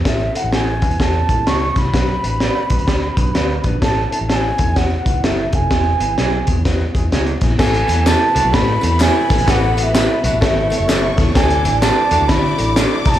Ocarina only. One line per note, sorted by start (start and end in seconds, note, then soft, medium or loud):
0.08 0.38 E5 medium
0.37 0.54 F#5 medium
0.54 1.02 G#5 medium
1.01 1.49 A5 medium
1.48 1.80 C#6 medium
1.78 3.66 B5 medium
3.85 4.11 A5 loud
4.13 4.19 A5 medium
4.31 4.36 A5 medium
4.35 4.78 G#5 medium
4.77 5.27 F#5 medium
5.25 5.57 E5 medium
5.55 6.48 G#5 medium
7.59 8.09 G#5 loud
8.07 8.55 A5 loud
8.54 9.04 B5 loud
9.02 9.52 G#5 medium
9.51 9.80 F#5 loud
9.80 9.85 F#5 medium
9.84 11.19 E5 medium
11.36 11.79 G#5 loud
11.81 12.30 A5 loud
12.28 12.76 B5 loud
13.06 13.19 A5 loud
13.06 13.11 A#5 loud